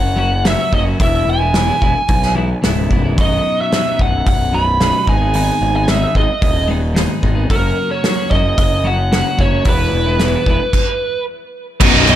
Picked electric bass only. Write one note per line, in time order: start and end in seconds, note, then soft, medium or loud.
0.00 0.55 F#1 medium
0.72 0.94 F#1 medium
1.00 1.22 E1 medium
1.27 1.70 E1 medium
1.82 1.93 E1 medium
2.09 2.52 B1 medium
2.64 2.88 C#1 medium
2.91 3.15 B0 medium
3.18 3.39 B0 medium
3.99 4.21 B0 medium
4.27 4.91 B0 medium
5.07 5.50 G#1 medium
5.61 6.04 G#1 medium
6.15 6.26 G#1 medium
6.42 7.06 D#1 medium
7.23 7.45 G#1 medium
7.50 7.71 F#1 medium
8.31 8.52 F#1 medium
8.58 9.22 F#1 medium
9.39 9.60 F#1 medium
9.65 9.87 E1 medium
9.93 10.35 E1 medium
10.46 10.57 E1 medium
11.81 12.02 B0 loud
12.07 12.15 B0 medium